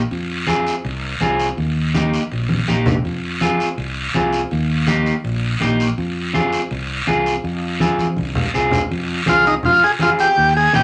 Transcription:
0.11 0.70 F2 medium
0.11 high conga soft
0.11 long guiro medium
0.47 0.73 C4 medium
0.47 0.73 F4 medium
0.47 0.73 G#4 medium
0.47 high conga medium
0.47 short guiro medium
0.67 short guiro medium
0.84 1.14 C2 medium
0.84 high conga soft
0.84 long guiro medium
1.21 1.51 C2 medium
1.21 1.47 C4 medium
1.21 1.47 F4 medium
1.21 1.47 G#4 medium
1.21 high conga medium
1.21 short guiro medium
1.39 short guiro medium
1.57 2.16 D#2 medium
1.57 high conga soft
1.57 long guiro medium
1.94 2.20 A#3 medium
1.94 2.20 D#4 medium
1.94 2.21 G4 medium
1.94 high conga medium
1.94 short guiro medium
2.13 short guiro medium
2.32 2.61 A#1 medium
2.32 high conga soft
2.32 long guiro medium
2.49 high conga medium
2.68 2.98 A#1 medium
2.68 2.94 A#3 medium
2.68 2.94 D#4 medium
2.68 2.94 G4 medium
2.68 high conga medium
2.68 short guiro medium
2.86 low conga medium
2.86 short guiro medium
3.05 3.63 F2 medium
3.05 high conga soft
3.05 long guiro medium
3.41 3.67 C4 medium
3.41 3.67 F4 medium
3.41 3.67 G#4 medium
3.41 high conga medium
3.41 short guiro medium
3.60 short guiro medium
3.78 4.07 C2 medium
3.78 high conga soft
3.78 long guiro medium
4.14 4.44 C2 medium
4.14 4.40 C4 medium
4.14 4.41 F4 medium
4.14 4.41 G#4 medium
4.14 high conga medium
4.14 short guiro medium
4.33 short guiro medium
4.51 5.10 D#2 loud
4.51 high conga soft
4.51 long guiro medium
4.87 5.13 A#3 medium
4.87 5.13 D#4 medium
4.87 5.14 G4 medium
4.87 high conga medium
4.87 short guiro medium
5.06 short guiro medium
5.24 5.54 A#1 loud
5.24 high conga soft
5.24 long guiro medium
5.60 5.91 A#1 medium
5.60 5.87 A#3 medium
5.60 5.87 D#4 medium
5.60 5.87 G4 medium
5.60 high conga medium
5.60 short guiro medium
5.80 short guiro medium
5.98 6.56 F2 medium
5.98 high conga soft
5.98 long guiro medium
6.33 6.60 C4 medium
6.33 6.60 F4 medium
6.33 6.60 G#4 medium
6.33 high conga medium
6.33 short guiro medium
6.52 short guiro medium
6.71 7.01 C2 medium
6.71 high conga soft
6.71 long guiro medium
7.07 7.37 C2 medium
7.07 7.33 C4 medium
7.07 7.33 F4 medium
7.07 7.33 G#4 medium
7.07 high conga medium
7.07 short guiro medium
7.26 short guiro medium
7.44 8.03 F2 medium
7.44 high conga soft
7.44 long guiro medium
7.80 8.06 C4 medium
7.80 8.07 F4 medium
7.80 8.07 G#4 medium
7.80 high conga medium
7.80 short guiro medium
7.98 high conga medium
7.98 short guiro medium
8.17 8.47 C2 loud
8.17 high conga medium
8.17 long guiro medium
8.35 low conga medium
8.54 8.84 C2 medium
8.54 8.80 C4 medium
8.54 8.80 F4 medium
8.54 8.80 G#4 medium
8.54 short guiro medium
8.71 low conga medium
8.71 short guiro medium
8.91 9.20 F2 medium
8.91 high conga soft
8.91 long guiro medium
9.26 9.57 C2 medium
9.26 9.53 C4 medium
9.26 9.53 F4 medium
9.26 9.45 F4 medium
9.26 9.53 G#4 medium
9.26 high conga medium
9.26 short guiro medium
9.46 9.55 D#4 medium
9.46 short guiro medium
9.63 9.79 F2 medium
9.63 9.84 F4 loud
9.63 high conga soft
9.63 low conga medium
9.63 long guiro medium
9.84 9.92 G#4 medium
9.99 10.16 F2 medium
9.99 10.26 C4 medium
9.99 10.26 F4 soft
9.99 10.10 F4 medium
9.99 10.27 G#4 medium
9.99 high conga medium
9.99 short guiro medium
10.19 10.54 G4 loud
10.19 short guiro medium
10.37 10.67 D#2 medium
10.37 high conga soft
10.37 long guiro medium
10.57 10.73 G#4 medium
10.73 10.83 A#1 loud
10.73 10.83 A#3 medium
10.73 10.83 D#4 medium
10.73 10.83 G4 medium
10.73 high conga medium
10.73 short guiro medium

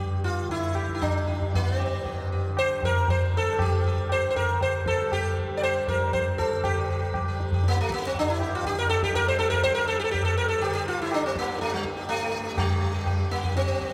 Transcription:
0.00 1.94 G2 medium
0.00 0.40 D3 medium
0.00 0.92 G3 medium
0.00 0.21 G4 soft
0.24 0.50 F4 medium
0.41 2.46 D3 medium
0.49 0.93 E4 medium
0.49 tabla tin medium
0.49 tabla ge medium
0.75 0.99 G4 soft
0.75 tabla na medium
0.88 1.43 G3 medium
0.88 tabla ke medium
0.95 1.01 E4 medium
1.02 1.55 D4 medium
1.02 tabla na medium
1.02 tabla ge medium
1.27 1.51 G4 soft
1.27 tabla te medium
1.41 2.99 G3 medium
1.41 tabla ge medium
1.54 1.76 A#3 medium
1.54 tabla tin medium
1.54 tabla ge medium
1.76 2.28 C4 medium
1.76 tabla na medium
1.81 2.04 G4 soft
1.95 4.01 G2 medium
2.05 2.29 G4 soft
2.05 tabla tin medium
2.05 tabla ge medium
2.32 2.56 G4 soft
2.46 4.49 D3 medium
2.57 2.84 C5 loud
2.57 tabla na medium
2.83 3.10 A#4 medium
2.83 tabla tin medium
2.83 tabla ge medium
2.99 3.48 G3 medium
3.08 3.36 C5 medium
3.08 tabla tin medium
3.08 tabla ge medium
3.34 3.62 A4 medium
3.34 tabla ke medium
3.48 5.01 G3 medium
3.59 3.85 G4 medium
3.59 tabla na medium
3.59 tabla ge medium
3.86 4.09 G4 soft
4.01 6.00 G2 medium
4.09 4.29 C5 loud
4.09 tabla na medium
4.30 4.36 C5 medium
4.36 4.62 A#4 medium
4.36 tabla tin medium
4.36 tabla ge medium
4.49 6.51 D3 medium
4.61 4.87 C5 medium
4.61 tabla tin medium
4.61 tabla ge medium
4.86 5.12 A4 medium
4.86 tabla ke medium
5.01 5.51 G3 medium
5.12 5.36 G4 medium
5.12 tabla na medium
5.12 tabla ge medium
5.51 7.15 G3 medium
5.57 5.63 D5 medium
5.62 5.88 C5 loud
5.62 tabla na medium
5.87 6.13 A#4 medium
5.87 tabla tin medium
5.87 tabla ge medium
6.00 8.12 G2 medium
6.13 6.40 C5 medium
6.13 tabla tin medium
6.13 tabla ge medium
6.38 6.65 A4 medium
6.38 tabla ke medium
6.52 6.65 D3 soft
6.64 8.62 D3 medium
6.64 6.77 G4 medium
6.64 tabla na loud
6.64 tabla ge loud
6.79 6.89 G4 soft
6.90 7.01 G4 soft
7.02 7.14 G4 soft
7.14 7.63 G3 medium
7.14 7.27 G4 soft
7.14 tabla na medium
7.14 tabla ge medium
7.28 7.51 G4 soft
7.40 tabla te medium
7.52 7.76 G4 soft
7.52 tabla ge medium
7.63 9.12 G3 medium
7.63 tabla te medium
7.68 7.79 A#3 medium
7.77 7.91 A3 medium
7.77 tabla te medium
7.90 8.05 A#3 medium
7.90 tabla ke medium
8.02 tabla te medium
8.07 8.17 C4 medium
8.12 10.11 G2 medium
8.12 tabla tin medium
8.12 tabla ge medium
8.19 8.30 D4 medium
8.30 8.54 E4 medium
8.40 8.64 G4 soft
8.40 tabla na medium
8.55 8.66 F4 medium
8.62 10.58 D3 medium
8.62 tabla tin medium
8.62 tabla ge medium
8.67 8.78 G4 loud
8.79 8.89 A#4 loud
8.89 9.01 A4 loud
8.89 tabla na medium
9.03 9.15 G4 loud
9.03 tabla ke medium
9.12 9.62 G3 medium
9.12 9.28 A#4 loud
9.12 tabla na medium
9.12 tabla ge medium
9.28 9.38 C5 loud
9.39 9.49 A4 loud
9.39 tabla te medium
9.50 9.63 A#4 loud
9.50 tabla ge medium
9.62 11.08 G3 medium
9.62 9.74 C5 loud
9.62 tabla tin medium
9.62 tabla ge medium
9.75 9.87 A#4 loud
9.88 9.99 A4 loud
10.00 10.04 G4 loud
10.04 10.11 A4 medium
10.11 12.04 G2 medium
10.11 10.24 G4 medium
10.11 tabla tin medium
10.11 tabla ge medium
10.25 10.37 A4 medium
10.38 10.48 A#4 loud
10.48 10.62 A4 medium
10.58 12.54 D3 medium
10.58 10.73 G4 loud
10.62 tabla na medium
10.75 10.86 G4 medium
10.88 11.00 F4 loud
11.02 11.13 E4 medium
11.08 11.56 G3 medium
11.12 11.25 D4 medium
11.12 tabla na medium
11.26 11.37 C4 medium
11.36 11.61 A#3 loud
11.36 tabla ke medium
11.56 13.01 G3 medium
11.56 tabla te medium
11.61 11.72 A3 medium
11.73 11.85 G3 medium
11.73 tabla te medium
11.85 11.96 G4 soft
11.85 tabla ke medium
11.97 12.20 G4 soft
11.97 tabla te medium
12.04 13.93 G2 medium
12.08 12.59 A3 medium
12.08 tabla tin medium
12.22 12.33 G4 soft
12.34 12.45 G4 soft
12.46 12.69 G4 soft
12.54 13.93 D3 medium
12.54 13.33 G3 medium
12.54 tabla na medium
12.54 tabla ge medium
12.70 12.92 G4 soft
12.94 13.05 G4 soft
13.01 13.51 G3 medium
13.06 13.18 G4 soft
13.06 tabla na medium
13.06 tabla ge medium
13.19 13.41 G4 soft
13.31 13.56 A#3 medium
13.31 tabla te medium
13.43 13.65 G4 soft
13.43 tabla ge medium
13.51 13.93 G3 medium
13.56 13.93 C4 loud
13.56 tabla te medium
13.68 13.79 G4 soft
13.68 tabla te medium
13.80 13.90 G4 soft
13.80 tabla ke medium

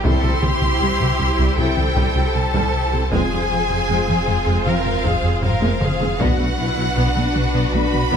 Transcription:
0.00 0.12 C2 medium
0.00 0.22 G3 medium
0.00 3.07 E4 medium
0.00 3.08 G4 medium
0.00 taiko medium
0.04 3.13 C2 medium
0.04 0.16 C2 medium
0.04 0.32 C4 medium
0.04 0.32 E4 medium
0.04 0.42 A4 medium
0.04 6.16 C5 medium
0.04 1.54 C6 medium
0.23 0.31 C2 soft
0.23 0.35 C2 medium
0.23 0.31 F#3 soft
0.23 taiko mid soft
0.42 0.50 C2 medium
0.42 0.54 C2 medium
0.42 0.50 G3 soft
0.42 1.58 G4 medium
0.42 taiko mid medium
0.62 0.73 C2 medium
0.62 0.70 C2 soft
0.62 0.69 E3 soft
0.62 taiko mid soft
0.81 0.92 C2 medium
0.81 0.89 C2 medium
0.81 0.99 G3 medium
1.00 1.08 C2 medium
1.00 1.12 C3 medium
1.00 1.08 F#3 soft
1.19 1.27 C2 medium
1.19 1.31 C2 medium
1.19 1.28 G3 soft
1.39 1.46 C2 medium
1.39 1.50 C2 medium
1.39 1.57 G3 medium
1.57 1.65 C2 soft
1.57 1.70 C3 medium
1.57 1.66 F#3 medium
1.57 1.86 C4 medium
1.57 1.86 E4 medium
1.57 3.09 A4 medium
1.57 2.35 G5 medium
1.77 1.84 C2 soft
1.77 1.89 C2 medium
1.77 1.85 G3 soft
1.77 taiko mid soft
1.96 2.04 C2 medium
1.96 2.08 C2 medium
1.96 2.14 G3 medium
1.96 taiko medium
2.15 2.23 C2 soft
2.15 2.27 C2 medium
2.15 2.24 F#3 soft
2.34 2.43 C2 soft
2.34 2.47 C2 medium
2.34 2.42 G3 medium
2.34 3.12 A5 medium
2.54 2.62 C2 medium
2.54 2.66 C2 medium
2.54 2.72 G3 medium
2.54 taiko medium
2.73 2.85 C2 medium
2.92 3.00 C2 medium
2.92 3.04 C3 medium
2.92 3.00 G3 medium
3.11 6.21 F1 medium
3.11 3.19 F2 medium
3.11 3.23 F2 medium
3.11 3.30 G#3 medium
3.11 6.15 C4 medium
3.11 3.40 C4 medium
3.11 6.20 F4 medium
3.11 3.40 F4 medium
3.11 4.63 G#4 medium
3.11 4.63 G#5 loud
3.11 taiko medium
3.31 3.38 F2 soft
3.31 3.43 F2 medium
3.31 3.39 G3 soft
3.50 3.58 F2 medium
3.50 3.62 F2 medium
3.50 3.58 G#3 soft
3.69 3.77 F2 soft
3.69 3.82 F2 medium
3.69 3.77 F3 soft
3.88 3.96 F2 medium
3.88 4.01 F2 medium
3.88 4.06 G#3 medium
4.08 4.15 F2 medium
4.08 4.20 F3 medium
4.08 4.15 G3 medium
4.27 4.35 F2 medium
4.27 4.39 F2 medium
4.27 4.35 G#3 soft
4.46 4.54 F2 medium
4.46 4.58 F2 medium
4.46 4.64 G#3 medium
4.65 4.73 F2 medium
4.65 4.78 F3 medium
4.65 4.73 G3 medium
4.65 4.94 C4 medium
4.65 4.94 F4 medium
4.65 5.04 A#4 medium
4.65 5.41 F5 medium
4.84 4.92 F2 medium
4.84 4.97 F2 medium
4.84 4.92 G#3 medium
5.03 5.11 F2 medium
5.03 5.16 F2 medium
5.03 5.22 G#3 medium
5.03 5.43 G#4 medium
5.03 taiko medium
5.22 5.31 F2 medium
5.22 5.35 F2 medium
5.22 5.30 G3 medium
5.41 5.50 F2 medium
5.41 5.54 F2 medium
5.41 5.49 G#3 soft
5.41 5.80 A#4 medium
5.41 6.18 F5 medium
5.41 taiko low-mid medium
5.61 5.69 F2 medium
5.61 5.74 F2 medium
5.61 5.79 G#3 medium
5.61 taiko high medium
5.81 5.93 F2 medium
5.81 6.20 G#4 medium
5.81 taiko mid medium
6.00 6.08 F2 medium
6.00 6.13 F3 medium
6.00 6.07 G#3 medium
6.00 taiko low medium
6.19 6.27 B1 medium
6.19 8.17 B1 medium
6.19 6.32 B2 medium
6.19 6.37 B3 medium
6.19 6.48 B3 medium
6.19 8.17 D4 medium
6.19 6.47 D4 medium
6.19 8.17 F#4 medium
6.19 6.58 F#4 medium
6.19 8.17 B4 medium
6.19 7.73 F#5 medium
6.19 taiko medium
6.38 6.46 B1 medium
6.38 6.51 B2 medium
6.38 6.46 A3 soft
6.57 6.66 B1 medium
6.57 6.70 B2 medium
6.57 6.65 B3 soft
6.57 6.96 E4 medium
6.77 6.85 B1 medium
6.77 6.89 B2 medium
6.77 6.85 F#3 soft
6.96 7.04 B1 medium
6.96 7.09 B2 medium
6.96 7.14 B3 medium
6.96 7.74 D4 medium
7.15 7.23 B1 medium
7.15 7.23 A3 medium
7.15 7.28 B3 medium
7.34 7.43 B1 medium
7.34 7.47 B2 medium
7.34 7.42 B3 medium
7.53 7.62 B1 medium
7.53 7.66 B2 medium
7.53 7.71 B3 medium
7.73 7.81 B1 medium
7.73 7.81 A3 medium
7.73 8.01 B3 medium
7.73 7.86 B3 medium
7.73 8.01 D4 medium
7.73 8.12 F#4 medium
7.73 8.17 B5 loud
7.92 8.01 B1 medium
7.92 8.05 B2 medium
7.92 8.00 B3 medium
8.11 8.17 B1 medium
8.11 8.17 B2 medium
8.11 8.17 B3 medium
8.11 8.17 E4 medium
8.11 taiko medium

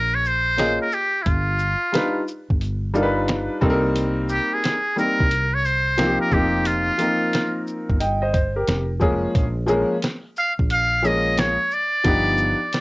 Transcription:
0.00 0.77 A#1 medium
0.00 0.16 A#4 medium
0.15 0.29 C#5 medium
0.25 0.81 C5 loud
0.25 shaker medium
0.57 0.85 A#3 medium
0.57 0.85 C#4 medium
0.57 0.85 F4 medium
0.57 0.86 G#4 medium
0.57 0.86 D#5 medium
0.57 snare medium
0.57 closed hi-hat medium
0.81 0.95 A#4 medium
0.92 1.24 G4 medium
0.92 shaker soft
1.22 1.74 G1 loud
1.22 1.30 E4 medium
1.22 kick loud
1.22 closed hi-hat medium
1.28 2.28 F4 medium
1.59 shaker medium
1.92 2.20 G3 medium
1.92 2.20 D4 medium
1.92 2.20 D#4 medium
1.92 2.21 F4 medium
1.92 2.21 B4 medium
1.92 snare loud
1.92 closed hi-hat medium
2.28 shaker soft
2.50 3.47 G1 medium
2.50 kick medium
2.61 closed hi-hat medium
2.94 3.60 G3 medium
2.94 3.62 D4 medium
2.94 3.62 D#4 medium
2.94 3.62 F4 medium
2.94 3.04 A#4 medium
2.94 shaker medium
3.03 3.66 B4 medium
3.28 snare loud
3.28 closed hi-hat medium
3.61 4.38 C2 medium
3.61 4.71 G3 medium
3.61 4.72 A#3 medium
3.61 4.72 C4 medium
3.61 4.72 D#4 medium
3.61 3.71 A4 medium
3.61 kick loud
3.61 shaker soft
3.70 4.76 A#4 loud
3.96 closed hi-hat medium
4.29 4.55 G4 medium
4.29 shaker medium
4.54 4.98 G#4 medium
4.64 snare loud
4.64 closed hi-hat medium
4.96 5.23 G3 medium
4.96 5.23 A#3 medium
4.96 5.24 C4 medium
4.96 5.24 D#4 soft
4.96 5.24 A#4 medium
4.96 5.55 A#4 medium
4.96 shaker medium
5.20 6.17 C2 medium
5.20 kick medium
5.31 closed hi-hat medium
5.54 5.67 C#5 loud
5.65 6.20 C5 medium
5.65 shaker medium
5.97 6.29 F3 medium
5.97 6.30 A#3 medium
5.97 6.31 C4 medium
5.97 6.31 D#4 medium
5.97 6.08 F4 medium
5.97 snare medium
5.97 closed hi-hat medium
6.06 6.32 G4 medium
6.21 6.35 A#4 medium
6.31 6.89 F1 medium
6.31 6.89 F3 medium
6.31 6.89 A#3 medium
6.31 6.90 C4 medium
6.31 6.90 D#4 medium
6.31 6.68 G4 medium
6.31 6.91 G4 medium
6.31 kick medium
6.31 shaker soft
6.65 7.67 F4 medium
6.65 closed hi-hat medium
6.98 7.95 F3 medium
6.98 7.95 A#3 medium
6.98 7.96 C4 medium
6.98 7.96 D#4 medium
6.98 7.96 A#4 medium
6.98 closed hi-hat medium
6.98 shaker medium
7.33 snare loud
7.33 closed hi-hat medium
7.67 shaker medium
7.89 8.64 G1 medium
7.89 kick medium
8.00 8.20 D#5 medium
8.00 8.21 G5 medium
8.00 closed hi-hat medium
8.22 8.32 C5 medium
8.22 8.33 D#5 medium
8.34 8.55 C5 medium
8.34 kick medium
8.34 closed hi-hat medium
8.34 shaker medium
8.56 8.88 G4 soft
8.56 8.88 A#4 medium
8.68 9.25 F1 medium
8.68 snare medium
8.68 closed hi-hat medium
9.00 9.43 F3 medium
9.00 9.44 G#3 medium
9.00 9.44 A#3 medium
9.00 9.44 C#4 medium
9.00 9.44 G#4 medium
9.00 kick medium
9.00 shaker soft
9.35 9.83 A#1 loud
9.35 kick loud
9.35 closed hi-hat medium
9.67 9.94 F3 medium
9.67 9.95 G#3 medium
9.67 9.95 A#3 medium
9.67 9.95 C#4 medium
9.67 9.96 G#4 medium
9.67 shaker medium
10.03 snare medium
10.03 closed hi-hat medium
10.37 10.53 F5 medium
10.37 shaker medium
10.59 11.56 A#1 medium
10.59 kick medium
10.70 11.07 F5 loud
10.70 closed hi-hat medium
11.03 11.54 F3 medium
11.03 11.55 G#3 medium
11.03 11.55 A#3 medium
11.03 11.55 C#4 medium
11.03 11.55 G#4 medium
11.03 11.41 D#5 medium
11.03 shaker medium
11.38 11.75 C#5 medium
11.38 snare loud
11.38 closed hi-hat medium
11.71 12.81 D5 medium
11.71 shaker soft
12.04 12.52 G1 loud
12.04 12.56 F3 medium
12.04 12.56 B3 medium
12.04 12.56 D4 medium
12.04 12.57 D#4 medium
12.04 12.57 G4 medium
12.04 kick loud
12.04 closed hi-hat medium
12.38 shaker soft
12.73 snare medium
12.73 closed hi-hat medium

